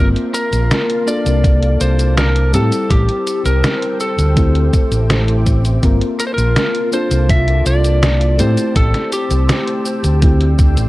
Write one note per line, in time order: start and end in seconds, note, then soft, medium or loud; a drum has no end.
0.00 0.12 G1 loud
0.00 1.00 A#3 medium
0.00 2.52 A#3 medium
0.00 1.00 C4 medium
0.00 1.01 F4 medium
0.00 1.01 A#4 medium
0.00 2.52 F5 medium
0.00 4.33 A5 medium
0.00 1.07 C6 medium
0.16 closed hi-hat soft
0.34 1.10 A#4 loud
0.34 closed hi-hat medium
0.34 cabasa medium
0.53 0.67 A#1 medium
0.53 closed hi-hat soft
0.53 cabasa soft
0.71 snare loud
0.71 closed hi-hat medium
0.71 cabasa soft
0.90 closed hi-hat soft
1.06 2.46 A#3 medium
1.06 2.46 D4 medium
1.06 2.47 F4 medium
1.06 2.47 A4 medium
1.06 1.83 D5 loud
1.06 2.53 D6 medium
1.06 cabasa medium
1.26 1.75 C2 medium
1.26 closed hi-hat soft
1.26 cabasa soft
1.44 kick loud
1.44 closed hi-hat medium
1.44 cabasa soft
1.63 closed hi-hat soft
1.81 2.55 C2 medium
1.81 2.15 C5 medium
1.81 closed hi-hat medium
1.81 cabasa medium
1.99 closed hi-hat soft
1.99 cabasa soft
2.17 2.54 A#4 loud
2.17 snare loud
2.17 closed hi-hat medium
2.17 cabasa soft
2.36 closed hi-hat soft
2.52 2.68 A2 loud
2.52 4.29 G3 medium
2.52 4.29 C4 medium
2.52 4.30 E4 medium
2.52 4.30 G4 loud
2.52 2.92 A4 medium
2.52 5.80 C5 medium
2.52 5.80 G5 medium
2.52 4.35 E6 medium
2.52 closed hi-hat medium
2.52 cabasa medium
2.72 closed hi-hat soft
2.72 cabasa soft
2.90 3.05 A1 loud
2.90 3.42 G4 loud
2.90 kick loud
2.90 closed hi-hat medium
2.90 cabasa soft
3.09 closed hi-hat soft
3.27 closed hi-hat medium
3.27 cabasa medium
3.45 3.60 C2 medium
3.45 4.00 A#4 loud
3.45 closed hi-hat soft
3.45 cabasa soft
3.64 snare loud
3.64 closed hi-hat medium
3.64 cabasa soft
3.82 closed hi-hat soft
4.00 5.43 A4 medium
4.00 cabasa medium
4.18 4.67 D2 medium
4.18 closed hi-hat soft
4.18 cabasa soft
4.35 5.75 A3 medium
4.35 5.76 C4 medium
4.35 5.76 E4 medium
4.35 5.77 G4 medium
4.35 5.82 E5 medium
4.35 5.82 D6 medium
4.35 kick loud
4.35 closed hi-hat medium
4.35 cabasa soft
4.55 closed hi-hat soft
4.73 kick loud
4.73 closed hi-hat medium
4.73 cabasa medium
4.91 5.77 A1 medium
4.91 closed hi-hat soft
4.91 cabasa soft
5.10 snare loud
5.10 closed hi-hat medium
5.10 cabasa soft
5.28 closed hi-hat soft
5.47 kick medium
5.47 closed hi-hat medium
5.47 cabasa medium
5.65 closed hi-hat soft
5.65 cabasa soft
5.82 5.98 G1 loud
5.82 6.85 A#3 medium
5.82 8.37 A#3 medium
5.82 6.86 C4 medium
5.82 8.37 F4 medium
5.82 6.86 F4 medium
5.82 6.87 A#4 medium
5.82 10.18 A5 medium
5.82 6.92 C6 medium
5.82 kick loud
5.82 closed hi-hat medium
5.82 cabasa soft
6.01 closed hi-hat soft
6.20 6.26 A#4 loud
6.20 closed hi-hat medium
6.20 cabasa medium
6.27 6.34 C5 medium
6.34 6.52 A#1 medium
6.34 6.89 A#4 loud
6.38 closed hi-hat soft
6.38 cabasa soft
6.56 snare loud
6.56 closed hi-hat medium
6.56 cabasa soft
6.75 closed hi-hat soft
6.91 8.31 A#3 medium
6.91 8.32 D4 medium
6.91 8.32 F4 medium
6.91 8.33 A4 medium
6.91 7.31 C5 loud
6.91 8.38 D6 medium
6.91 cabasa medium
7.11 7.60 C2 medium
7.11 closed hi-hat soft
7.11 cabasa soft
7.29 7.67 E5 loud
7.29 kick loud
7.29 closed hi-hat medium
7.29 cabasa soft
7.48 closed hi-hat soft
7.66 8.41 C2 medium
7.66 8.42 D5 loud
7.66 closed hi-hat medium
7.66 cabasa medium
7.84 closed hi-hat soft
7.84 cabasa soft
8.03 snare loud
8.03 closed hi-hat medium
8.03 cabasa soft
8.21 closed hi-hat soft
8.38 8.54 A2 loud
8.38 10.14 A3 medium
8.38 10.15 C4 medium
8.38 10.15 E4 medium
8.38 10.16 G4 loud
8.38 8.74 C5 medium
8.38 10.21 C5 medium
8.38 10.89 G5 medium
8.38 10.21 E6 medium
8.38 closed hi-hat medium
8.38 cabasa medium
8.57 closed hi-hat soft
8.57 cabasa soft
8.76 8.90 A1 loud
8.76 9.10 A4 loud
8.76 kick loud
8.76 closed hi-hat loud
8.76 cabasa soft
8.94 snare soft
8.94 closed hi-hat soft
9.12 10.19 G4 medium
9.12 closed hi-hat medium
9.12 cabasa medium
9.31 9.45 C2 loud
9.31 closed hi-hat soft
9.31 cabasa soft
9.49 snare loud
9.49 closed hi-hat loud
9.49 cabasa soft
9.67 closed hi-hat soft
9.85 cabasa medium
10.04 10.53 D2 medium
10.04 closed hi-hat soft
10.04 cabasa soft
10.21 10.89 A3 medium
10.21 10.89 C4 medium
10.21 10.89 E4 medium
10.21 10.89 G4 medium
10.21 10.89 D5 medium
10.21 10.89 C6 medium
10.21 10.89 E6 medium
10.21 kick loud
10.21 closed hi-hat medium
10.21 cabasa soft
10.40 closed hi-hat soft
10.59 10.77 D2 medium
10.59 kick loud
10.59 closed hi-hat medium
10.59 cabasa medium
10.77 10.89 A1 medium
10.77 closed hi-hat soft
10.77 cabasa soft